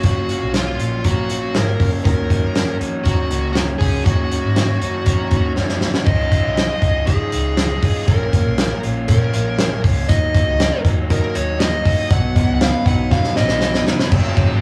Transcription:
Already playing: C#4 A#4
0.03 F#1 F#3 A#3 C#4 F4 F#4, kick, closed hi-hat
0.29 A#3 C#4 F4, closed hi-hat
0.42 B1
0.54 F#3 A#3 C#4 F4, snare, closed hi-hat
0.79 A#1 A#3 C#4 F4, closed hi-hat
1.04 F#3 A#3 C#4 F4 F#4 A#4, kick, closed hi-hat
1.30 A#3 C#4 F4, closed hi-hat
1.55 G#1 F#3 A#3 C#4 F4 G#4 A#4, snare, closed hi-hat
1.68 A#4
1.80 F#1 A#3 C#4 F4, kick, open hi-hat
2.04 D#2 D#3 A#3 C#4 F#4 A#4, kick, closed hi-hat
2.30 A#3 C#4 D#4 F#4, kick, closed hi-hat
2.43 F#2
2.55 D#3 A#3 C#4 F#4, snare, closed hi-hat
2.80 F2 A#3 C#4 D#4 F#4, closed hi-hat
3.04 D#2 D#3 A#3 F#4 A#4, kick, closed hi-hat
3.08 C#4 F#4
3.31 C#2 A#3 C#4 D#4 F#4, closed hi-hat
3.53 D#3 A#3 C#4 F#4 A#4, snare, closed hi-hat
3.78 C#2 C#4 F#4 G#4, kick, open hi-hat
3.83 A#3
4.04 D#2 D#3 A#3 C#4 F#4, kick, closed hi-hat
4.30 A#3 C#4 D#4 F#4, closed hi-hat
4.44 G#2
4.56 D#3 A#3 C#4 F#4, snare, closed hi-hat
4.80 F#2 A#3 C#4 D#4 F#4, closed hi-hat
5.06 F2 D#3 A#3 C#4 F#4 A#4, kick, closed hi-hat
5.31 D#2 A#3 C#4 D#4 F#4, kick, closed hi-hat
5.55 F#2 D#3 A#3 C#4 F#4 A#4, snare
5.69 snare
5.81 F#2 A#3 C#4 F#4, snare
5.94 snare
6.06 C#2 C#3 F3 G#3 D#4 F4 D#5, kick, crash
6.32 G#3 D#4 F4, kick, closed hi-hat
6.45 B1
6.56 C#3 F3 G#3 D#4 F4 G#4, snare, closed hi-hat
6.81 C#2 G#3 D#4 F4, kick, closed hi-hat
7.06 F3 G#3 D#4 F4 G#4, kick, closed hi-hat
7.32 C#2 G#3 D#4 F4, closed hi-hat
7.57 C#3 F3 G#3 D#4 F4, snare, closed hi-hat
7.83 G#3 D#4 F4, kick, open hi-hat
7.96 F4
8.07 A#1 A#2 F3 A#3 C#4 F4 A#4, kick, closed hi-hat
8.33 A#3 C#4 F4, kick, closed hi-hat
8.47 B1
8.58 A#2 F3 A#3 C#4 F4 G#4, snare, closed hi-hat
8.71 A#4
8.83 A#1 A#3 C#4 F4, closed hi-hat
9.08 A#2 F3 A#3 C#4 A#4, kick, closed hi-hat
9.12 F4
9.33 A#1 A#3 C#4 F4, closed hi-hat
9.59 A#2 F3 A#3 C#4 F4, snare, closed hi-hat
9.84 C#2 A#3 C#4 F4, kick, open hi-hat
10.09 D#2 D#3 F#3 A#3 D#4 D#5, kick, closed hi-hat
10.34 F#3 A#3 D#4 F#4, kick, closed hi-hat
10.47 C#2
10.59 D#3 F#3 A#3 D#4 A#4, snare, closed hi-hat
10.84 D#2 F#3 A#3 D#4 F#4, kick, closed hi-hat
11.09 D#3 F#3 A#3 D#4 A#4, kick, closed hi-hat
11.34 D#2 F#3 A#3 D#4 F#4 C#5, closed hi-hat
11.59 D#3 F#3 A#3 D#4 D#5, snare, closed hi-hat
11.83 F#3 A#3 D#4 F#4, kick, open hi-hat
12.09 B1 B2 F#3 B3 D#4 F#5, kick, closed hi-hat
12.35 F#3 B3 D#4, kick, closed hi-hat
12.49 C#2
12.55 F#5
12.61 B2 F#3 B3 D#4 B4 F5, snare, closed hi-hat
12.86 B1 F#3 B3 D#4 F#5, kick, closed hi-hat
13.11 B2 F#3 B3 D#4 F5, kick, snare
13.24 snare
13.36 B1 F#3 B3 D#4 D#5, snare
13.48 snare
13.60 B2 F#3 B3 D#4, snare
13.74 snare
13.86 F1 F#3 B3 D#4, snare
13.99 snare
14.10 F#1 F#2 C#3 F3 F#3 A#3 C#4, kick, crash
14.36 F3 A#3 C#4 D#4, kick, ride
14.49 G#1 F4

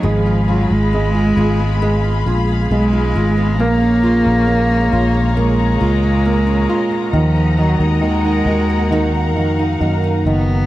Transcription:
Already playing: G#2 B3 D#4 G#4
0.03 G#1 F3 G#3 F5 B5
0.26 F4
0.48 F#3 F4 G#4
0.70 G#1 G#3 F4
0.93 G#3 B3
1.15 F4
1.37 G#1 F4 G#4
1.60 B3
1.82 G#3
2.04 F4
2.26 A#1 F4 G#4
2.49 F4
2.71 B1 G#3 B3
2.93 F4
3.16 G#1 F4 G#4
3.37 B3
3.60 A#1 A#2 A#3 C#5 A#5
3.81 C#4
4.03 F4
4.25 A#1 C#4
4.47 G#3 A#3
4.70 C#4
4.92 A#1 F4
5.14 G#3
5.36 A#2 G#3 A#3
5.59 C#4
5.81 C#2 F4
6.03 C#4
6.25 G#3 A#3
6.47 C#4
6.69 F4
6.91 G#3
7.13 D#2 D#3 F3 A#4 D#5 F#5
7.36 D#4
7.58 D#3 F#3 F#4
7.80 D#2 G#3 D#4
8.01 D#3 A#3
8.25 D#4
8.46 D#2 D#3 F#4
8.70 A#3
8.91 D#3 F5
9.14 D#4
9.35 F2 D#3 F#4
9.59 D#4
9.80 F#2 D#3 A#3
10.04 D#4
10.26 F#1 D#3 B3 F#4

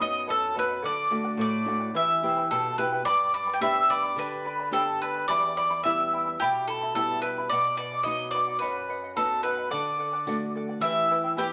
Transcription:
Already playing: F#2
0.00 F#3 B3 D#4 B4 D#5 F#5 D#6
0.13 D#5 F#5
0.27 F#2 A4 B4 D#5 F#5 A5
0.54 F#3 B3 D#4 B4 D#5 F#5 B5
0.59 B4
0.69 D#5 F#5
0.82 D3 A4 D5 F#5 D6
1.10 A3 D4 F#4 A4 D5 F#5
1.24 D5 F#5
1.37 A2 A4 D5 F#5 D6
1.65 A3 D4 F#4 A4 D5 F#5
1.80 D5 F#5
1.94 E3 E4 G4 B4 E5 G5 E6
2.22 B3 E4 G4 B4 E5 G5
2.37 E4 B4 G5
2.51 B2 E4 G4 A4 B4 E5 G5 A5
2.78 B3 E4 G4 B4 E5 G5 B5
2.92 E4 B4 G5
3.05 G2 G4 B4 D5 G5 B5 D6, shaker
3.33 B4 D5 G5 B5 D6
3.47 B4 D5 B5
3.54 G5
3.60 B3 D4 G4 B4 D5 E5 G5 B5 E6, shaker
3.90 B4 D5 G5 B5 D6
4.03 B4 D5 B5
4.16 D3 G4 B4 D5 G5 B5, shaker
4.45 B4 D5 G5 B5
4.60 B4 D5 B5
4.71 B3 D4 G4 A4 B4 D5 G5 A5 B5, shaker
5.01 B4 D5 G5 B5
5.15 B4 D5 B5
5.28 E2 E4 G4 D5 E5 G5 B5 D6, shaker
5.56 E4 D5 E5 G5 B5 D6
5.70 E4 E5 B5
5.84 G3 B3 E4 G4 E5 G5 B5 E6, shaker
6.13 E4 E5 G5 B5
6.26 E4 E5 B5
6.40 B2 E4 G4 E5 G5 B5, shaker
6.68 E4 A4 E5 G5 A5 B5
6.82 E4 E5 B5
6.95 G3 B3 E4 G4 A4 E5 G5 A5 B5, shaker
7.22 E4 B4 E5 G5 B5
7.38 E4 E5 B5
7.50 B2 B4 D5 D#5 F#5 D6, shaker
7.77 B4 D5 D#5 F#5 D6
7.91 D#5 F#5
8.03 F#3 B3 D#4 B4 D#5 F#5 D#6, shaker
8.31 B4 D5 D#5 D6
8.36 F#5
8.48 D#5 F#5
8.59 F#2 B4 D#5 F#5 B5, shaker
8.89 B4 D#5 F#5
9.04 D#5 F#5
9.16 F#3 B3 D#4 A4 B4 D#5 F#5 A5, shaker
9.43 B4 D#5 F#5 B5
9.57 D#5 F#5
9.70 D3 A4 D5 F#5 D6, shaker
9.98 A4 D5 F#5
10.13 D5 F#5
10.26 A3 D4 F#4 A4 D5 F#5, shaker
10.55 A4 D5 F#5
10.69 D5 F#5
10.81 E3 E4 G4 B4 E5 G5 E6, shaker
11.10 E4 B4 E5 G5
11.24 E4 B4 G5
11.37 B3 E4 G4 B4 E5 G5, shaker

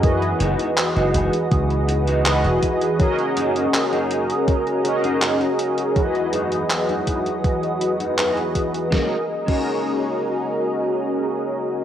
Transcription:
Already playing: F#2 G#4 F#5 D#6
0.02 E3 F#4 G#4 B4 D#5, kick, closed hi-hat
0.22 closed hi-hat
0.40 F#1 G#3 D#4 F#4, closed hi-hat
0.59 closed hi-hat
0.77 clap, closed hi-hat
0.96 F#1 G#3 D#4 F#4, closed hi-hat
1.14 F#1, kick, closed hi-hat
1.33 closed hi-hat
1.51 C#2, kick, closed hi-hat
1.70 muted clean electric guitar stroke, closed hi-hat
1.88 muted clean electric guitar stroke, closed hi-hat
2.07 G#3 D#4 F#4, closed hi-hat
2.25 E3 F#4 G#4 B4 D#5, clap, closed hi-hat
2.44 E1, closed hi-hat
2.63 kick, closed hi-hat
2.81 muted clean electric guitar stroke, closed hi-hat
2.98 C#4 F#4 G#4 A#4 D#5 A#5, kick, closed hi-hat
3.19 closed hi-hat
3.36 F#2 A#3 D#4 G#4, closed hi-hat
3.56 closed hi-hat
3.74 clap, closed hi-hat
3.92 F#2 A#3 D#4 G#4, closed hi-hat
4.11 closed hi-hat
4.30 closed hi-hat
4.48 kick, closed hi-hat
4.66 muted clean electric guitar stroke, closed hi-hat
4.83 C#4 F#4 G#4 A#4 D#5, muted clean electric guitar stroke, closed hi-hat
5.03 F#2 A#3 D#4 G#4, closed hi-hat
5.22 clap, closed hi-hat
5.41 closed hi-hat
5.59 closed hi-hat
5.78 muted clean electric guitar stroke, closed hi-hat
5.95 E3 F#3 F#4 G#4 B4 D#5 F#5 D#6, kick, closed hi-hat
6.15 closed hi-hat
6.33 F#2 G#3 D#4 F#4, closed hi-hat
6.52 closed hi-hat
6.70 clap, closed hi-hat
6.89 F#2 G#3 D#4 F#4, closed hi-hat
7.07 kick, closed hi-hat
7.26 closed hi-hat
7.44 kick, closed hi-hat
7.63 muted clean electric guitar stroke, closed hi-hat
7.81 muted clean electric guitar stroke, closed hi-hat
8.00 F#2 G#3 D#4 F#4, closed hi-hat
8.17 E3 F#4 G#4 B4 D#5, clap, closed hi-hat
8.37 closed hi-hat
8.55 kick, closed hi-hat
8.74 muted clean electric guitar stroke, closed hi-hat
8.90 G#3 A#3 C#4 D#4 F#4 G#4 A#4 D#5 G#5 A#5, kick, snare
8.94 F#4 D#5
9.46 G#3 A#3 C#4 D#4 F#4 G#4 A#4, kick, crash
9.50 F#4 D#5

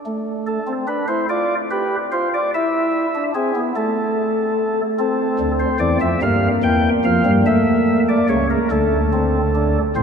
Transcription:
0.06 A3
0.47 A4
0.67 C4
0.87 D4 B4
1.08 E4 C5
1.29 F4 D5
1.71 G4 B4
2.12 F4 C5
2.34 D5
2.54 E4 E5
3.15 D4
3.35 C4 G#4
3.55 B3
3.76 A3 A4
4.99 C4 A4
5.39 D2 D3
5.60 C5
5.79 E2 E3 D5
6.01 F2 F3 E5
6.22 G2 G3 A#3 F5
6.63 E2 E3 G5
7.04 F2 F3 F5
7.25 G2 G3
7.46 A3 E5
8.09 D5
8.29 C#2 C#3 C#5
8.50 A#4
8.71 D2 D3 A3 A4
9.13 C4
9.55 D4
9.96 A1 A2 C4 C5

